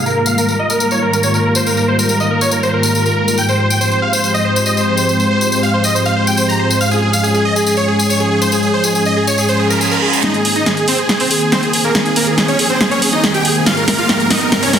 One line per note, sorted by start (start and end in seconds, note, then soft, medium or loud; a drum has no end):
0.06 0.15 A#4 medium
0.06 tambourine soft
0.16 0.25 A#4 medium
0.26 0.36 F5 medium
0.26 tambourine medium
0.38 0.47 A#4 medium
0.38 tambourine medium
0.49 0.58 A#4 medium
0.49 tambourine soft
0.59 0.68 D#5 medium
0.70 0.79 A#4 medium
0.70 tambourine medium
0.80 0.90 A#4 medium
0.80 tambourine medium
0.91 1.01 C#5 medium
0.91 tambourine soft
1.02 1.11 A#4 medium
1.13 1.22 A#4 medium
1.13 tambourine medium
1.23 1.33 C#5 medium
1.23 tambourine medium
1.34 1.43 A#4 medium
1.34 tambourine soft
1.45 1.54 A#4 medium
1.55 1.65 C5 medium
1.55 tambourine medium
1.67 1.76 A#4 medium
1.67 tambourine medium
1.77 1.86 A#4 medium
1.77 tambourine soft
1.88 1.97 C5 medium
1.99 2.08 A#4 medium
1.99 tambourine medium
2.09 2.19 A#4 medium
2.09 tambourine medium
2.20 2.29 D#5 medium
2.20 tambourine soft
2.31 2.40 A#4 medium
2.41 2.51 C#5 medium
2.41 tambourine medium
2.51 2.61 A#4 medium
2.51 tambourine medium
2.63 2.72 C5 medium
2.63 tambourine soft
2.74 2.83 A#4 medium
2.83 2.93 A#4 medium
2.83 tambourine medium
2.95 3.04 A#4 medium
2.95 tambourine medium
3.06 3.15 A#4 medium
3.06 tambourine soft
3.17 3.26 A#4 medium
3.27 3.36 A#4 medium
3.27 tambourine medium
3.38 3.47 G5 medium
3.38 tambourine medium
3.49 3.58 C5 medium
3.49 tambourine soft
3.59 3.68 C5 medium
3.70 3.79 G5 medium
3.70 tambourine medium
3.81 3.90 C5 medium
3.81 tambourine medium
3.91 4.01 C5 medium
3.91 tambourine soft
4.02 4.11 F5 medium
4.13 4.22 C5 medium
4.13 tambourine medium
4.23 4.33 C5 medium
4.23 tambourine medium
4.34 4.43 D#5 medium
4.34 tambourine soft
4.45 4.54 C5 medium
4.55 4.65 C5 medium
4.55 tambourine medium
4.66 4.75 D#5 medium
4.66 tambourine medium
4.77 4.86 C5 medium
4.77 tambourine soft
4.88 4.97 C5 medium
4.97 5.08 C5 medium
4.97 tambourine medium
5.09 5.18 C5 medium
5.09 tambourine medium
5.20 5.29 C5 medium
5.20 tambourine soft
5.31 5.40 C5 medium
5.41 5.51 C5 medium
5.41 tambourine medium
5.52 5.61 C5 medium
5.52 tambourine medium
5.63 5.72 F5 medium
5.63 tambourine soft
5.74 5.83 C5 medium
5.84 5.93 D#5 medium
5.84 tambourine medium
5.95 6.04 C5 medium
5.95 tambourine medium
6.06 6.15 F5 medium
6.06 tambourine soft
6.16 6.26 C5 medium
6.27 6.36 G5 medium
6.27 tambourine medium
6.37 6.47 C5 medium
6.37 tambourine medium
6.49 6.58 A#5 medium
6.49 tambourine soft
6.59 6.68 C5 medium
6.70 6.79 C5 medium
6.70 tambourine medium
6.81 6.90 F5 medium
6.81 tambourine medium
6.91 7.00 G#4 medium
6.91 tambourine soft
7.02 7.11 G#4 medium
7.13 7.22 F5 medium
7.13 tambourine medium
7.23 7.33 G#4 medium
7.23 tambourine medium
7.34 7.43 G#4 medium
7.34 tambourine soft
7.45 7.54 D#5 medium
7.56 7.65 G#4 medium
7.56 tambourine medium
7.66 7.76 G#4 medium
7.66 tambourine medium
7.77 7.86 C#5 medium
7.77 tambourine soft
7.88 7.97 G#4 medium
7.99 8.08 G#4 medium
7.99 tambourine medium
8.09 8.18 C#5 medium
8.09 tambourine medium
8.20 8.29 G#4 medium
8.20 tambourine soft
8.31 8.40 G#4 medium
8.41 8.51 C5 medium
8.41 tambourine medium
8.52 8.61 G#4 medium
8.52 tambourine medium
8.63 8.72 G#4 medium
8.63 tambourine soft
8.74 8.83 C5 medium
8.84 8.94 G#4 medium
8.84 tambourine medium
8.95 9.04 G#4 medium
8.95 tambourine medium
9.05 9.15 D#5 medium
9.05 tambourine soft
9.16 9.26 G#4 medium
9.27 9.36 C#5 medium
9.27 tambourine medium
9.38 9.47 G#4 medium
9.38 tambourine medium
9.38 reverse cymbal medium
9.49 9.58 C5 medium
9.49 tambourine soft
9.59 9.68 G#4 medium
9.70 9.79 A#4 medium
9.70 tambourine medium
9.81 9.90 G#4 medium
9.81 tambourine medium
9.91 10.01 A#4 medium
9.91 tambourine soft
10.02 10.11 G#4 medium
10.13 10.22 G#4 medium
10.13 tambourine medium
10.23 10.33 D#4 medium
10.23 10.33 D#5 medium
10.23 snare soft
10.23 closed hi-hat medium
10.23 riser medium
10.34 10.43 G#4 medium
10.34 closed hi-hat soft
10.45 10.54 G#4 medium
10.45 open hi-hat loud
10.56 10.65 D#4 medium
10.56 10.65 D#5 medium
10.56 closed hi-hat soft
10.66 10.76 G#4 medium
10.66 snare soft
10.66 closed hi-hat medium
10.77 10.86 G#4 medium
10.77 closed hi-hat soft
10.88 10.97 C4 medium
10.88 10.97 C5 medium
10.88 open hi-hat loud
10.98 11.08 G#4 medium
10.98 closed hi-hat soft
11.09 11.19 G#4 medium
11.09 snare soft
11.09 closed hi-hat medium
11.20 11.29 C4 medium
11.20 11.29 C5 medium
11.20 open hi-hat medium
11.31 11.40 G#4 medium
11.31 open hi-hat loud
11.41 11.51 G#4 medium
11.41 closed hi-hat soft
11.52 11.61 C4 medium
11.52 11.61 C5 medium
11.52 snare medium
11.52 closed hi-hat medium
11.63 11.72 G#4 medium
11.63 closed hi-hat soft
11.73 11.83 G#4 medium
11.73 open hi-hat loud
11.84 11.94 A#3 medium
11.84 11.94 A#4 medium
11.84 closed hi-hat soft
11.95 12.04 G#4 medium
11.95 snare medium
11.95 closed hi-hat medium
12.06 12.15 G#4 medium
12.06 closed hi-hat soft
12.16 12.26 A#3 medium
12.16 12.26 A#4 medium
12.16 open hi-hat loud
12.27 12.36 G#4 medium
12.27 closed hi-hat soft
12.38 12.47 G#4 medium
12.38 snare medium
12.38 closed hi-hat medium
12.48 12.58 C#4 medium
12.48 12.58 C#5 medium
12.48 closed hi-hat soft
12.59 12.68 G#4 medium
12.59 open hi-hat loud
12.70 12.79 C4 medium
12.70 12.79 C5 medium
12.70 closed hi-hat soft
12.81 12.90 G#4 medium
12.81 snare medium
12.81 closed hi-hat medium
12.91 13.00 C#4 medium
12.91 13.00 C#5 medium
12.91 closed hi-hat soft
13.02 13.11 G#4 medium
13.02 open hi-hat loud
13.13 13.22 D#4 medium
13.13 13.22 D#5 medium
13.13 closed hi-hat soft
13.23 13.33 G#4 medium
13.23 snare medium
13.23 closed hi-hat medium
13.34 13.43 G4 medium
13.34 13.43 G5 loud
13.34 closed hi-hat soft
13.45 13.54 G#4 medium
13.45 open hi-hat loud
13.56 13.65 G#4 medium
13.56 closed hi-hat soft
13.66 13.75 F4 medium
13.66 13.75 F5 loud
13.66 snare medium
13.66 closed hi-hat medium
13.77 13.86 A#4 medium
13.77 closed hi-hat soft
13.88 13.97 A#4 medium
13.88 snare medium
13.88 open hi-hat loud
13.98 14.08 F4 medium
13.98 14.08 F5 loud
13.98 closed hi-hat soft
14.09 14.18 A#4 medium
14.09 snare medium
14.09 closed hi-hat medium
14.20 14.29 A#4 medium
14.20 closed hi-hat soft
14.30 14.40 D#4 medium
14.30 14.40 D#5 medium
14.30 snare medium
14.30 open hi-hat loud
14.41 14.51 A#4 medium
14.41 closed hi-hat soft
14.52 14.61 A#4 medium
14.52 snare medium
14.52 closed hi-hat medium
14.63 14.72 C#4 medium
14.63 14.72 C#5 medium
14.63 open hi-hat medium
14.73 14.79 A#4 medium
14.73 snare medium
14.73 open hi-hat loud